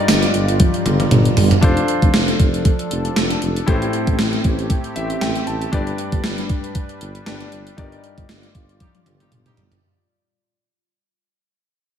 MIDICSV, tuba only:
0, 0, Header, 1, 2, 480
1, 0, Start_track
1, 0, Tempo, 512821
1, 1520, Time_signature, 4, 2, 24, 8
1, 11214, End_track
2, 0, Start_track
2, 0, Title_t, "Tuba"
2, 0, Program_c, 0, 58
2, 79, Note_on_c, 0, 31, 102
2, 253, Note_off_c, 0, 31, 0
2, 321, Note_on_c, 0, 31, 95
2, 589, Note_off_c, 0, 31, 0
2, 800, Note_on_c, 0, 31, 96
2, 973, Note_off_c, 0, 31, 0
2, 1040, Note_on_c, 0, 31, 108
2, 1213, Note_off_c, 0, 31, 0
2, 1281, Note_on_c, 0, 31, 94
2, 1454, Note_off_c, 0, 31, 0
2, 1521, Note_on_c, 0, 29, 99
2, 1694, Note_off_c, 0, 29, 0
2, 1893, Note_on_c, 0, 29, 90
2, 1971, Note_off_c, 0, 29, 0
2, 2000, Note_on_c, 0, 29, 99
2, 2173, Note_off_c, 0, 29, 0
2, 2243, Note_on_c, 0, 29, 88
2, 2510, Note_off_c, 0, 29, 0
2, 2721, Note_on_c, 0, 29, 89
2, 2893, Note_off_c, 0, 29, 0
2, 2961, Note_on_c, 0, 29, 93
2, 3134, Note_off_c, 0, 29, 0
2, 3200, Note_on_c, 0, 29, 95
2, 3373, Note_off_c, 0, 29, 0
2, 3441, Note_on_c, 0, 33, 96
2, 3613, Note_off_c, 0, 33, 0
2, 3812, Note_on_c, 0, 33, 88
2, 3890, Note_off_c, 0, 33, 0
2, 3921, Note_on_c, 0, 33, 95
2, 4094, Note_off_c, 0, 33, 0
2, 4161, Note_on_c, 0, 33, 92
2, 4429, Note_off_c, 0, 33, 0
2, 4641, Note_on_c, 0, 33, 86
2, 4813, Note_off_c, 0, 33, 0
2, 4879, Note_on_c, 0, 33, 95
2, 5052, Note_off_c, 0, 33, 0
2, 5122, Note_on_c, 0, 33, 94
2, 5294, Note_off_c, 0, 33, 0
2, 5360, Note_on_c, 0, 31, 100
2, 5533, Note_off_c, 0, 31, 0
2, 5732, Note_on_c, 0, 31, 85
2, 5810, Note_off_c, 0, 31, 0
2, 5841, Note_on_c, 0, 31, 91
2, 6014, Note_off_c, 0, 31, 0
2, 6561, Note_on_c, 0, 31, 93
2, 6733, Note_off_c, 0, 31, 0
2, 6800, Note_on_c, 0, 31, 88
2, 6973, Note_off_c, 0, 31, 0
2, 7042, Note_on_c, 0, 31, 80
2, 7214, Note_off_c, 0, 31, 0
2, 7282, Note_on_c, 0, 31, 88
2, 7454, Note_off_c, 0, 31, 0
2, 7654, Note_on_c, 0, 31, 83
2, 7731, Note_off_c, 0, 31, 0
2, 7761, Note_on_c, 0, 31, 89
2, 7933, Note_off_c, 0, 31, 0
2, 8001, Note_on_c, 0, 31, 81
2, 8269, Note_off_c, 0, 31, 0
2, 8480, Note_on_c, 0, 31, 83
2, 8653, Note_off_c, 0, 31, 0
2, 8720, Note_on_c, 0, 31, 87
2, 8893, Note_off_c, 0, 31, 0
2, 8960, Note_on_c, 0, 31, 85
2, 9133, Note_off_c, 0, 31, 0
2, 11214, End_track
0, 0, End_of_file